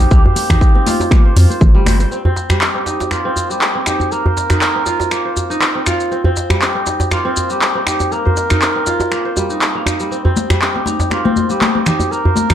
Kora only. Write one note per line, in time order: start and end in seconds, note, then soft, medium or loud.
0.00 1.73 G3 medium
0.00 0.11 A#3 medium
0.00 0.74 C4 medium
0.00 0.49 D#4 medium
0.11 1.11 A#3 medium
0.25 1.25 C5 medium
0.50 2.12 D#4 loud
0.75 2.11 C4 medium
0.86 1.35 F4 loud
1.11 3.04 A#3 medium
1.25 1.49 C5 medium
1.36 2.87 F4 medium
1.50 1.86 C5 medium
1.75 2.16 G3 loud
1.86 2.00 C5 medium
2.00 3.19 C5 medium
2.11 2.25 C4 medium
2.25 2.74 C4 loud
2.50 3.49 G3 medium
2.75 3.25 C4 medium
2.86 3.86 D#4 medium
3.11 4.11 A#3 medium
3.25 3.75 C4 loud
3.50 5.84 G3 medium
3.75 4.75 C4 medium
3.87 4.50 D#4 medium
4.12 5.11 A#3 medium
4.25 5.25 C5 medium
4.50 5.50 D#4 medium
4.75 5.75 C4 medium
4.86 5.86 F4 medium
5.11 7.04 A#3 medium
5.25 6.44 C5 medium
5.50 6.86 D#4 loud
5.75 6.11 C4 medium
5.86 7.38 F4 loud
6.11 6.24 C4 medium
6.25 6.74 C4 loud
6.50 7.49 G3 medium
6.75 7.25 C4 medium
6.86 7.86 D#4 medium
7.11 8.11 A#3 medium
7.25 7.75 C4 loud
7.50 9.35 G3 medium
7.75 8.75 C4 medium
7.87 8.50 D#4 medium
8.11 9.11 A#3 medium
8.25 9.25 C5 medium
8.50 9.50 D#4 loud
8.75 10.11 C4 medium
8.86 10.38 F4 medium
9.11 9.75 A#3 medium
9.25 10.44 C5 medium
9.36 9.99 G3 medium
9.50 9.86 D#4 medium
9.75 11.10 A#3 medium
9.86 10.86 D#4 medium
10.00 10.49 G3 medium
10.11 10.24 C4 medium
10.25 10.74 C4 loud
10.50 11.49 G3 medium
10.75 11.24 C4 medium
10.86 11.86 D#4 medium
11.11 12.11 A#3 medium
11.25 11.74 C4 loud
11.50 12.54 G3 medium
11.75 12.54 C4 medium
11.86 12.50 D#4 medium
12.11 12.54 A#3 medium
12.25 12.54 C5 medium
12.50 12.54 D#4 loud